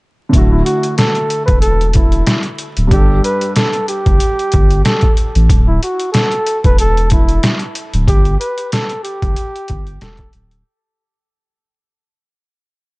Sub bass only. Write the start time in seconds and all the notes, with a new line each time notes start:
0.34 D1
1.48 E1
2.77 D1
2.92 G1
4.07 F#1
4.54 G1
5.35 A1
5.50 D1
6.65 E1
7.94 D1
8.08 G1
9.23 F#1
9.70 G1
10.02 E1
10.34 D1